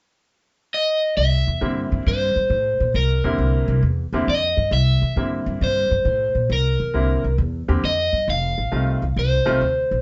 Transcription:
0.74 1.15 D#5 medium
1.17 1.42 C2 medium
1.17 2.02 E5 medium
1.47 1.59 E2 medium
1.61 1.86 G2 medium
1.61 2.30 D3 medium
1.61 2.30 G3 medium
1.61 2.30 A#3 medium
1.61 2.30 C4 medium
1.61 2.30 E4 medium
1.92 2.03 G2 medium
2.06 2.31 G2 medium
2.06 2.92 C5 medium
2.36 2.48 G2 medium
2.50 2.74 A2 medium
2.80 2.92 A#2 medium
2.94 3.19 C2 medium
2.94 3.80 A#4 medium
3.24 3.36 E2 medium
3.24 3.80 D3 medium
3.24 3.81 G3 medium
3.24 3.81 A#3 medium
3.24 3.81 C4 medium
3.24 3.81 E4 medium
3.38 3.63 C2 medium
3.68 3.80 C2 medium
3.83 4.07 E2 medium
4.13 4.25 E2 medium
4.13 4.26 D3 medium
4.13 4.27 G3 medium
4.13 4.27 A#3 medium
4.13 4.27 C4 medium
4.13 4.27 E4 medium
4.27 4.52 F2 medium
4.27 4.70 D#5 medium
4.57 4.69 G2 medium
4.71 4.96 C2 medium
4.71 5.64 E5 loud
5.02 5.14 E2 medium
5.16 5.41 G2 medium
5.16 5.85 D3 soft
5.16 5.85 G3 medium
5.16 5.85 A#3 soft
5.16 5.85 C4 soft
5.16 5.86 E4 medium
5.46 5.58 G2 medium
5.61 5.85 G2 medium
5.61 6.52 C5 medium
5.91 6.03 G2 medium
6.05 6.29 A2 medium
6.35 6.47 A#2 medium
6.50 6.74 C2 medium
6.50 7.36 A#4 medium
6.80 6.91 E2 medium
6.94 7.19 C2 medium
6.94 7.21 D3 medium
6.94 7.21 G3 medium
6.94 7.21 A#3 medium
6.94 7.21 C4 soft
6.94 7.22 E4 medium
7.24 7.36 C2 medium
7.38 7.63 E2 medium
7.68 7.80 E2 medium
7.68 7.81 D3 medium
7.68 7.82 G3 medium
7.68 7.82 A#3 medium
7.68 7.82 C4 medium
7.68 7.82 G4 medium
7.83 8.07 F2 medium
7.83 8.30 D#5 medium
8.13 8.25 G2 medium
8.28 8.52 F1 medium
8.28 9.14 F5 loud
8.58 8.69 A1 medium
8.72 8.96 C2 medium
8.72 8.99 D#3 medium
8.72 8.99 G3 soft
8.72 8.99 A3 soft
8.72 8.99 C4 soft
8.72 8.99 F4 medium
9.02 9.14 C2 medium
9.16 9.41 C2 medium
9.16 10.02 C5 medium
9.45 9.58 C2 medium
9.45 9.59 D#3 medium
9.45 9.59 G3 medium
9.45 9.59 A3 medium
9.45 9.59 C4 medium
9.45 9.59 F4 medium
9.61 9.85 D2 medium
9.91 10.02 A#1 medium

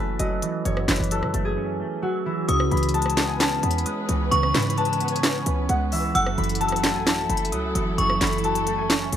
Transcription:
0.00 0.19 F#1 loud
0.00 0.19 E3 medium
0.00 0.19 F#3 medium
0.00 1.11 A3 medium
0.00 0.88 C#4 medium
0.00 0.25 E4 medium
0.00 1.25 F#4 medium
0.00 1.11 A4 medium
0.00 0.88 B4 medium
0.19 0.42 F#1 loud
0.19 1.10 F#3 medium
0.19 1.98 D#5 medium
0.19 closed hi-hat medium
0.42 0.87 E3 medium
0.42 closed hi-hat medium
0.65 0.87 F#1 loud
0.65 1.80 F#2 medium
0.65 2.56 C#5 medium
0.65 closed hi-hat medium
0.77 cross-stick medium
0.88 0.99 F#1 loud
0.88 2.03 E3 medium
0.88 2.93 B4 medium
0.88 snare loud
0.88 clap medium
0.88 closed hi-hat medium
0.96 1.24 F#1 loud
0.96 closed hi-hat medium
1.04 closed hi-hat medium
1.11 2.01 F#3 medium
1.11 1.51 A4 medium
1.11 closed hi-hat medium
1.23 1.34 C#3 loud
1.23 cross-stick medium
1.34 1.57 F#1 loud
1.34 1.79 A3 loud
1.34 closed hi-hat medium
1.45 3.00 G#4 medium
1.57 2.49 C#4 medium
1.80 2.49 A3 medium
2.02 2.48 F#3 loud
2.02 4.46 F#4 medium
2.26 2.49 E3 medium
2.26 3.92 E4 medium
2.48 2.71 C#2 loud
2.48 3.63 C#3 medium
2.48 6.11 E3 medium
2.48 6.11 C#4 medium
2.48 6.11 B4 medium
2.48 3.74 C#6 medium
2.48 3.36 D#6 medium
2.48 closed hi-hat medium
2.60 cross-stick medium
2.71 3.59 C#2 loud
2.71 3.86 E3 medium
2.71 3.63 B5 medium
2.71 closed hi-hat soft
2.77 closed hi-hat medium
2.83 closed hi-hat medium
2.89 closed hi-hat medium
2.94 3.85 G#3 medium
2.94 3.34 A5 medium
2.94 closed hi-hat medium
3.02 cross-stick medium
3.02 closed hi-hat medium
3.10 closed hi-hat medium
3.17 3.62 B3 loud
3.17 snare loud
3.17 clap medium
3.17 closed hi-hat medium
3.28 3.47 G#5 medium
3.40 4.55 C#4 medium
3.40 4.77 A5 medium
3.40 snare loud
3.40 clap loud
3.40 closed hi-hat medium
3.63 3.85 E2 loud
3.63 4.78 B3 medium
3.63 4.54 B5 medium
3.63 closed hi-hat medium
3.71 closed hi-hat medium
3.78 closed hi-hat medium
3.86 4.76 G#3 loud
3.86 5.03 D#6 medium
3.86 closed hi-hat medium
4.09 4.31 C#2 loud
4.09 4.53 E3 medium
4.09 closed hi-hat medium
4.31 4.54 C#2 loud
4.31 5.47 C#3 loud
4.31 6.11 C#6 loud
4.31 5.58 C#6 medium
4.31 closed hi-hat medium
4.43 cross-stick medium
4.54 5.43 G#2 loud
4.54 5.69 E3 medium
4.54 5.90 B5 medium
4.54 snare medium
4.54 clap medium
4.54 closed hi-hat soft
4.62 closed hi-hat medium
4.70 closed hi-hat medium
4.78 5.68 G#3 medium
4.78 5.18 A5 medium
4.78 closed hi-hat soft
4.85 closed hi-hat medium
4.93 closed hi-hat medium
5.00 5.45 B3 loud
5.00 closed hi-hat medium
5.08 6.67 G#5 medium
5.08 closed hi-hat medium
5.16 closed hi-hat medium
5.23 6.15 C#4 medium
5.23 snare loud
5.23 clap loud
5.23 closed hi-hat medium
5.46 5.68 C#2 loud
5.46 6.15 B3 medium
5.46 closed hi-hat medium
5.69 6.13 C#2 loud
5.69 6.15 G#3 loud
5.69 6.14 F#5 medium
5.69 closed hi-hat medium
5.92 6.15 E3 medium
5.92 7.58 E5 medium
5.92 open hi-hat medium
6.14 6.37 F#1 loud
6.14 7.29 F#2 loud
6.14 9.17 F#3 medium
6.14 9.17 E4 medium
6.14 9.17 A4 medium
6.14 7.75 F#5 medium
6.14 7.03 E6 loud
6.14 closed hi-hat medium
6.26 cross-stick medium
6.38 6.97 F#1 loud
6.38 7.52 E3 medium
6.38 7.29 B5 medium
6.38 closed hi-hat soft
6.44 closed hi-hat soft
6.49 closed hi-hat medium
6.55 closed hi-hat medium
6.61 7.52 F#3 medium
6.61 7.02 A5 medium
6.61 closed hi-hat medium
6.69 cross-stick medium
6.69 closed hi-hat medium
6.76 closed hi-hat medium
6.84 7.29 A3 loud
6.84 snare loud
6.84 clap medium
6.84 closed hi-hat medium
6.95 7.28 A1 loud
6.95 7.12 G#5 medium
7.06 8.21 C#4 medium
7.06 8.44 A5 medium
7.06 snare loud
7.06 clap loud
7.06 closed hi-hat medium
7.30 7.54 F#1 loud
7.30 8.44 A3 medium
7.30 8.21 B5 medium
7.30 closed hi-hat medium
7.37 closed hi-hat medium
7.45 closed hi-hat medium
7.52 7.74 C#2 loud
7.52 8.43 F#3 medium
7.52 8.70 D#6 medium
7.52 closed hi-hat medium
7.75 7.97 F#1 loud
7.75 8.20 E3 medium
7.75 closed hi-hat medium
7.98 8.20 F#1 loud
7.98 9.13 F#2 medium
7.98 9.17 C#6 medium
7.98 closed hi-hat medium
8.10 cross-stick medium
8.21 9.09 F#1 loud
8.21 9.17 E3 medium
8.21 9.17 B5 medium
8.21 snare medium
8.21 clap medium
8.21 closed hi-hat medium
8.27 closed hi-hat medium
8.33 closed hi-hat medium
8.38 closed hi-hat soft
8.44 9.17 F#3 medium
8.44 8.84 A5 medium
8.44 closed hi-hat soft
8.55 closed hi-hat medium
8.67 9.12 A3 loud
8.67 closed hi-hat medium
8.78 9.17 G#5 medium
8.90 9.17 C#4 medium
8.90 snare loud
8.90 clap loud
8.90 closed hi-hat medium
9.13 9.17 F#1 loud
9.13 9.17 A3 medium
9.13 closed hi-hat loud

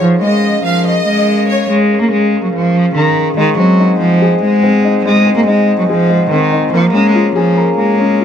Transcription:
0.00 0.21 F3 loud
0.00 3.34 C#4 medium
0.00 3.33 G#4 medium
0.00 3.34 A#4 medium
0.00 3.34 F5 medium
0.22 0.62 G#3 medium
0.22 0.62 D#5 medium
0.65 1.04 F3 medium
0.65 0.85 F5 medium
0.86 1.45 D#5 medium
1.06 1.66 G#3 medium
1.48 1.68 C#5 medium
1.70 1.99 G#3 medium
2.01 2.11 A#3 medium
2.12 2.41 G#3 medium
2.43 2.53 F#3 medium
2.54 2.93 F3 medium
2.96 3.35 D#3 medium
3.37 3.56 D#3 loud
3.37 4.41 G#3 medium
3.37 6.70 C5 medium
3.37 6.70 D#5 medium
3.37 6.70 F#5 medium
3.37 6.70 G#5 medium
3.58 3.98 F#3 medium
3.58 4.62 C4 medium
3.79 4.83 D#4 medium
4.00 4.40 F3 medium
4.22 5.27 G#4 medium
4.42 5.01 G#3 medium
4.42 5.04 G#3 medium
4.63 5.25 C4 medium
4.85 5.46 D#4 medium
5.05 5.35 G#3 loud
5.05 6.08 G#3 medium
5.26 6.29 C4 medium
5.37 5.46 A#3 medium
5.47 5.77 G#3 medium
5.47 6.51 D#4 medium
5.79 5.88 F#3 medium
5.89 6.29 F3 medium
5.89 6.73 G#4 medium
6.10 6.73 G#3 medium
6.31 6.70 D#3 medium
6.31 6.73 C4 medium
6.53 6.73 D#4 medium
6.73 6.92 F3 loud
6.73 7.76 A#3 medium
6.73 8.25 G#4 medium
6.73 8.25 C#5 medium
6.73 8.25 F5 medium
6.73 8.25 A#5 medium
6.94 7.33 G#3 medium
6.94 7.98 C#4 medium
7.15 8.19 F4 medium
7.36 7.75 F3 medium
7.36 8.25 G#4 loud
7.57 8.25 A#4 medium
7.78 8.25 G#3 medium
7.78 8.25 A#3 medium
7.99 8.25 C#4 loud
8.20 8.25 F4 medium

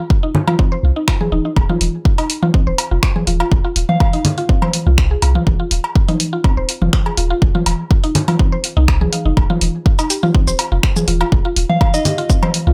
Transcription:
0.10 kick loud
0.23 0.28 D#4 medium
0.35 low conga medium
0.47 0.54 F4 loud
0.47 high tom medium
0.47 cowbell medium
0.59 0.64 C4 medium
0.59 kick loud
0.72 0.77 C5 loud
0.83 0.91 C2 medium
0.96 0.99 D#4 medium
1.08 1.11 F4 medium
1.08 finger snap loud
1.08 kick loud
1.08 cowbell medium
1.21 1.25 G#4 medium
1.21 high tom medium
1.32 1.40 D#1 loud
1.32 1.35 D#4 loud
1.45 1.52 D#4 medium
1.56 1.64 F1 medium
1.56 kick loud
1.56 cowbell medium
1.69 1.74 F4 loud
1.69 high tom medium
1.81 1.89 D#1 medium
1.81 open hi-hat medium
2.05 kick loud
2.18 2.23 D#4 loud
2.18 open hi-hat soft
2.18 cowbell medium
2.30 open hi-hat medium
2.43 2.50 F4 loud
2.43 high tom medium
2.54 2.59 C4 medium
2.54 kick loud
2.67 2.74 D#1 medium
2.67 2.72 C5 medium
2.78 open hi-hat loud
2.78 cowbell medium
2.91 2.98 F1 medium
2.91 2.98 F4 medium
3.03 finger snap loud
3.03 kick loud
3.16 3.19 G#4 medium
3.16 high tom medium
3.27 3.43 D#1 medium
3.27 3.35 F4 medium
3.27 open hi-hat medium
3.40 3.47 F4 loud
3.40 cowbell medium
3.52 3.60 F1 medium
3.52 kick loud
3.65 3.69 F4 loud
3.76 3.84 D#1 loud
3.76 open hi-hat medium
3.89 4.38 F5 medium
3.89 high tom medium
4.00 kick loud
4.00 cowbell medium
4.13 4.18 D#4 loud
4.13 open hi-hat soft
4.25 open hi-hat medium
4.25 low conga medium
4.38 4.45 F4 loud
4.38 open hi-hat soft
4.49 4.54 C4 medium
4.49 kick loud
4.62 4.67 C5 loud
4.62 high tom medium
4.62 cowbell medium
4.73 open hi-hat loud
4.87 5.15 C2 medium
4.87 4.93 F4 medium
4.98 finger snap loud
4.98 kick loud
5.11 5.14 G#4 medium
5.22 5.38 C2 medium
5.22 5.30 F4 medium
5.22 open hi-hat medium
5.22 cowbell medium
5.35 5.42 F4 loud
5.35 high tom medium
5.47 5.55 F1 loud
5.47 kick loud
5.60 5.64 F4 loud
5.71 5.79 D#1 loud
5.71 open hi-hat loud
5.84 cowbell medium
5.96 kick loud
6.08 6.13 D#4 loud
6.08 open hi-hat soft
6.08 high tom medium
6.20 open hi-hat loud
6.33 6.40 F4 medium
6.44 6.50 C4 medium
6.44 kick loud
6.44 cowbell medium
6.57 6.64 D#1 loud
6.57 6.62 C5 medium
6.69 open hi-hat loud
6.82 6.89 F1 medium
6.82 6.89 F4 medium
6.82 high tom medium
6.93 finger snap loud
6.93 kick loud
7.06 7.09 G#4 medium
7.06 cowbell medium
7.17 7.33 D#1 medium
7.17 7.25 F4 medium
7.17 open hi-hat medium
7.30 7.37 F4 loud
7.42 7.50 F1 medium
7.42 kick loud
7.55 7.59 F4 loud
7.55 high tom medium
7.66 7.74 D#1 medium
7.66 open hi-hat loud
7.66 cowbell medium
7.91 kick loud
8.04 8.08 D#4 loud
8.04 open hi-hat soft
8.15 open hi-hat medium
8.15 low conga medium
8.28 8.35 F4 loud
8.28 open hi-hat soft
8.28 high tom medium
8.28 cowbell medium
8.39 8.45 C4 medium
8.39 kick loud
8.52 8.57 C5 loud
8.64 open hi-hat loud
8.77 9.05 C2 medium
8.77 8.81 D#4 loud
8.88 finger snap loud
8.88 kick loud
8.88 cowbell medium
9.01 9.06 G#4 medium
9.01 high tom medium
9.13 9.18 F5 medium
9.13 open hi-hat medium
9.25 9.33 F1 medium
9.25 9.30 D#4 medium
9.37 9.45 F1 loud
9.37 kick loud
9.37 cowbell medium
9.50 9.55 F4 loud
9.50 high tom medium
9.61 9.69 D#1 medium
9.61 open hi-hat medium
9.86 kick loud
9.99 10.03 D#4 loud
9.99 open hi-hat soft
9.99 cowbell medium
9.99 shaker soft
10.10 10.13 G4 medium
10.10 open hi-hat medium
10.10 shaker soft
10.23 10.30 F4 loud
10.23 high tom medium
10.35 10.40 C4 medium
10.35 kick loud
10.47 10.55 D#1 loud
10.47 10.52 C5 loud
10.47 shaker soft
10.59 open hi-hat medium
10.59 cowbell medium
10.72 10.79 F1 medium
10.72 10.79 F4 medium
10.83 finger snap loud
10.83 kick loud
10.96 10.99 G#4 medium
10.96 high tom medium
10.96 shaker soft
11.08 11.23 D#1 medium
11.08 11.16 F4 medium
11.08 open hi-hat medium
11.21 11.28 F4 loud
11.21 cowbell medium
11.32 11.40 F1 loud
11.32 kick loud
11.45 11.50 F4 loud
11.56 11.64 D#1 loud
11.56 open hi-hat medium
11.69 12.18 F5 medium
11.69 high tom medium
11.81 kick loud
11.81 cowbell medium
11.94 11.98 D#4 loud
11.94 12.01 D#5 medium
11.94 open hi-hat soft
11.94 shaker soft
12.05 12.08 G4 medium
12.05 12.14 D#5 medium
12.05 open hi-hat medium
12.05 low conga medium
12.05 shaker soft
12.18 12.25 F4 loud
12.18 open hi-hat soft
12.30 12.35 C4 medium
12.30 kick loud
12.30 shaker soft
12.43 12.47 C5 loud
12.43 high tom medium
12.43 cowbell medium
12.54 open hi-hat medium
12.67 12.73 C2 medium
12.67 12.73 F4 medium

